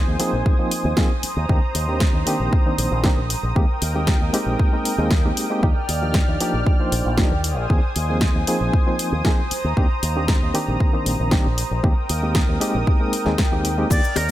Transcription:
Already playing: F3 A#3 C4 D#4 G#4 C5 G#5 D#6
0.07 D#2
0.19 F3 A#3 C4 D#4 G#4, open hi-hat
0.33 A#1
0.46 kick
0.59 F3 A#3 C4 D#4 C5
0.71 open hi-hat
0.85 D#2
0.97 F3 A#3 C4 D#4 G#4, kick, snare
1.23 C5 A#5, muted fingered electric bass stroke, open hi-hat
1.37 D#2
1.49 D#2 D#3 A#3 C4 D4 G4, kick
1.75 D#2, open hi-hat
1.88 D#3 A#3 C4 D4 G4
2.00 kick, snare
2.14 D#2
2.26 D#3 A#3 C4 D4 G4, open hi-hat
2.40 A#1
2.53 kick
2.66 D#3 A#3 C4 D4 C5
2.78 A#1, open hi-hat
2.91 A#1
3.04 D#3 A#3 C4 D4 G4, kick, snare
3.17 A#1
3.30 open hi-hat
3.43 A#1
3.56 D#2 G#3 A#3 C4 D#4 G4 A#4 G5, kick
3.82 D#2, open hi-hat
3.95 G#3 A#3 C4 D#4 G4
4.07 kick, snare
4.21 D#2
4.33 G#3 A#3 C4 D#4 G4, open hi-hat
4.46 A#1
4.60 kick
4.73 G#3 A#3 C4 D#4 A#4
4.85 open hi-hat
4.98 D#2 G#3 A#3 C4 D#4 G#4
5.11 kick, snare
5.25 G#3 A#3 C4 D#4 G4
5.37 open hi-hat
5.50 G#3 A#3 C4 D#4 G4
5.63 D#2 F3 A#3 D4 D#4 G4 D5 F6, kick
5.89 D#2, open hi-hat
6.02 F3 A#3 D4 D#4 G4
6.14 kick, snare
6.28 D#2
6.40 F3 A#3 D4 D#4 G4, open hi-hat
6.54 A#1
6.67 kick
6.80 F3 A#3 D4 D#4 C5
6.92 A#1, open hi-hat
7.05 A#1
7.18 F3 A#3 D4 D#4 G4, kick, snare
7.32 D#2
7.44 C5 G#5 D#6, open hi-hat
7.58 A#1
7.70 D#2 F3 A#3 C4 D#4 G#4, kick
7.96 D#2, open hi-hat
8.09 F3 A#3 C4 D#4 G#4
8.21 kick, snare
8.35 D#2
8.47 F3 A#3 C4 D#4 G#4, open hi-hat
8.61 A#1
8.73 kick
8.87 F3 A#3 C4 D#4 C5
8.99 open hi-hat
9.12 D#2
9.25 F3 A#3 C4 D#4 G#4, kick, snare
9.51 A#5, muted fingered electric bass stroke, open hi-hat
9.64 D#2
9.77 D#2 D#3 A#3 C4 D4 G4, kick
10.03 D#2, open hi-hat
10.16 D#3 A#3 C4 D4 G4
10.28 kick, snare
10.42 D#2
10.54 D#3 A#3 C4 D4 G4, open hi-hat
10.68 A#1
10.80 kick
10.93 D#3 A#3 C4 D4 C5
11.06 A#1, open hi-hat
11.20 A#1
11.31 D#3 A#3 C4 D4 G4, kick, snare
11.46 A#1
11.58 open hi-hat
11.71 A#1
11.83 D#2 G#3 A#3 C4 D#4 G4 A#4 G5 D#6, kick
12.09 D#2, open hi-hat
12.22 G#3 A#3 C4 D#4 G4
12.35 kick, snare
12.49 D#2
12.61 G#3 A#3 C4 D#4 G4, open hi-hat
12.75 A#1
12.87 kick
13.00 G#3 A#3 C4 D#4 A#4
13.13 open hi-hat
13.26 D#2 G#3 A#3 C4 D#4 G#4, snare
13.38 kick, snare
13.52 D#2 G#3 A#3 C4 D#4 G4
13.65 open hi-hat
13.78 G#3 A#3 C4 D#4 G4
13.90 D#2 F3 A#3 D4 D#4 G4 D5 F6, kick, crash, high bongo, cabasa
14.04 cabasa
14.16 D#2 A#4, open hi-hat, high bongo

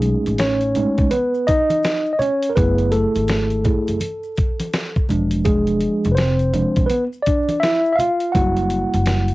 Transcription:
Already playing: B1 G#3 A3 C#4 D#4 G#4
0.02 closed hi-hat, maracas
0.26 A1, closed hi-hat, maracas
0.38 C#4 C#5, snare, closed hi-hat, maracas
0.61 closed hi-hat, maracas
0.75 G#3 A3 C#4 D#4, closed hi-hat, low conga, maracas
0.98 C#2, kick, closed hi-hat, maracas
1.11 B3 B4, closed hi-hat, high conga, maracas
1.34 maracas
1.47 D#4 D#5, kick, closed hi-hat, maracas
1.70 closed hi-hat, high conga, maracas
1.83 snare, closed hi-hat, maracas
2.06 maracas
2.13 D#5
2.19 C#4 C#5, closed hi-hat, low conga, maracas
2.42 closed hi-hat, maracas
2.49 A#4
2.55 F#1 A3 B3 E4 G#4 B4, kick, closed hi-hat, maracas
2.78 closed hi-hat, maracas
2.92 A3 A4, closed hi-hat, maracas
3.15 G#1, closed hi-hat, maracas
3.28 snare, closed hi-hat, maracas
3.50 closed hi-hat, maracas
3.64 A3 E4 G#4, kick, closed hi-hat, low conga, maracas
3.87 F#1, closed hi-hat, maracas
4.00 closed hi-hat, high conga, maracas
4.23 maracas
4.36 kick, closed hi-hat, maracas
4.60 closed hi-hat, high conga, maracas
4.73 snare, closed hi-hat, maracas
4.95 kick, maracas
5.09 E1 F3 G#3 D4, closed hi-hat, low conga, maracas
5.31 closed hi-hat, maracas
5.44 G#3 G#4, kick, closed hi-hat, maracas
5.67 closed hi-hat, maracas
5.81 closed hi-hat, maracas
6.04 F1, closed hi-hat, maracas
6.12 B4 C5
6.17 C4, snare, closed hi-hat, maracas
6.39 closed hi-hat, maracas
6.54 F3 G#3 D4, closed hi-hat, low conga, maracas
6.76 E1, kick, closed hi-hat, maracas
6.86 B3 B4, closed hi-hat, high conga, maracas
7.13 maracas
7.23 D5, closed hi-hat, maracas
7.27 D4, kick
7.49 closed hi-hat, high conga, maracas
7.60 E4 E5, snare, closed hi-hat, maracas
7.85 maracas
7.93 E5 F5
7.99 F4, closed hi-hat, low conga, maracas
8.20 closed hi-hat, maracas
8.32 F#1 G3 A#3 E4 F#5, kick, closed hi-hat, maracas
8.36 F#4
8.57 closed hi-hat, maracas
8.70 closed hi-hat, maracas
8.94 F#1, closed hi-hat, maracas
9.06 snare, closed hi-hat, maracas
9.28 closed hi-hat, maracas

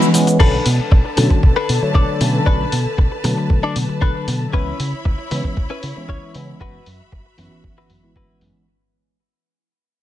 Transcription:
Already playing: E3 G#3 B3 C#4
0.02 shaker
0.14 E3 G#3 B3 C#4, open hi-hat, shaker
0.27 muted clean electric guitar stroke, closed hi-hat, shaker
0.39 B1 D3 F#3 D4 A4 B4 A5, kick, crash
0.66 B2, open hi-hat
0.79 muted fingered electric bass stroke
0.92 B1, muted clean electric guitar stroke, kick
1.05 muted clean electric guitar stroke
1.17 B2 D3 F#3 A3 C#4, muted clean electric guitar stroke, open hi-hat
1.30 muted clean electric guitar stroke, kick
1.43 B1, kick
1.56 D4 A4 B4
1.69 B2, open hi-hat
1.81 D3 F#3 A3 C#5, muted clean electric guitar stroke, muted fingered electric bass stroke
1.94 B1 D4 A4 D5, kick
2.20 B2 D3 F#3 A3 C#4, open hi-hat
2.46 B1 D3 F#3 A3 C#4 D4 A4 B4, kick
2.72 B2, open hi-hat
2.85 muted fingered electric bass stroke
2.98 B1, muted clean electric guitar stroke, kick
3.11 muted clean electric guitar stroke
3.23 B2 D3 F#3 A3, muted clean electric guitar stroke, open hi-hat
3.37 muted clean electric guitar stroke
3.50 B1, kick
3.63 D4 A4 D5
3.76 B2, open hi-hat
3.89 muted clean electric guitar stroke, muted fingered electric bass stroke
4.01 B1 D4 A4 B4, kick
4.28 B2, open hi-hat
4.53 C#2 E3 G#3 B3 C#4 E4 B4 C#5 B5, kick
4.80 C#3, open hi-hat
4.93 muted fingered electric bass stroke
5.05 C#2, muted clean electric guitar stroke, kick
5.18 muted clean electric guitar stroke
5.31 C#3 E3 G#3 B3 C#4, muted clean electric guitar stroke, open hi-hat
5.44 muted clean electric guitar stroke, kick
5.57 C#2, kick
5.70 C#4 E4 B4
5.83 C#3, open hi-hat
5.96 E3 G#3 B3 C#4, muted clean electric guitar stroke, muted fingered electric bass stroke
6.09 C#2 C#4 E4 C#5, kick
6.35 C#3 E3 G#3 B3 C#4, open hi-hat
6.61 F#1 E3 G#3 C#4 E4 F#4 B4 E5 B5, kick
6.86 F#2, open hi-hat
7.00 muted fingered electric bass stroke
7.12 F#1, muted clean electric guitar stroke, kick
7.26 muted clean electric guitar stroke
7.37 F#2 E3 B3 C#4, muted clean electric guitar stroke, open hi-hat
7.52 muted clean electric guitar stroke
7.64 F#1, kick
7.78 E4 F#4 B4
7.90 F#2, open hi-hat
8.03 E3 G#3 B3 E4, muted fingered electric bass stroke, muted clean electric guitar stroke
8.16 F#1 E4 F#4 B4, kick
8.41 F#2 E3 G#3 B3 C#4, open hi-hat

